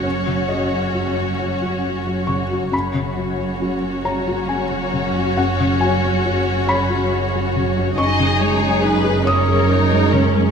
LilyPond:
<<
  \new Staff \with { instrumentName = "Violin section" } { \time 6/8 \key gis \dorian \tempo 4. = 46 cis''2. | cis''2.~ | cis''2. | dis''8 cis''8 b'8 cis''4. | }
  \new Staff \with { instrumentName = "Violin section" } { \time 6/8 \key gis \dorian fis'2. | fis'2.~ | fis'2. | gis'4. ais'4. | }
  \new Staff \with { instrumentName = "Felt piano" } { \time 6/8 \key gis \dorian cis''8 dis''4 r4 cis'''8 | b''4. ais''8 gis''4 | fis''8 gis''4 b''4. | cis'''4. dis'''4. | }
  \new Staff \with { instrumentName = "Felt piano" } { \clef bass \time 6/8 \key gis \dorian <fis, fis>16 cis16 fis16 cis'16 fis'16 cis'16 cis''16 fis'16 cis'16 fis16 cis16 fis16 | fis,16 cis16 fis16 cis'16 fis'16 cis'16 cis''16 fis'16 cis'16 fis16 cis16 fis16 | fis,16 cis16 fis16 cis'16 fis'16 cis'16 cis''16 fis'16 cis'16 fis16 cis16 fis16 | fis,16 cis16 gis16 cis'16 dis'16 gis'16 cis''16 gis'16 cis'16 gis16 cis16 gis16 | }
  \new Staff \with { instrumentName = "Viola section" } { \time 6/8 \key gis \dorian cis'2. | cis'2.~ | cis'2. | dis'4. cis'8 dis'8 cis'8 | }
  \new Staff \with { instrumentName = "Cello section" } { \clef bass \time 6/8 \key gis \dorian fis,2. | fis,2.~ | fis,2. | fis,2. | }
  \new Staff \with { instrumentName = "Double bass section" } { \clef bass \time 6/8 \key gis \dorian fis,,2. | fis,,2.~ | fis,,2. | fis,,2. | }
>>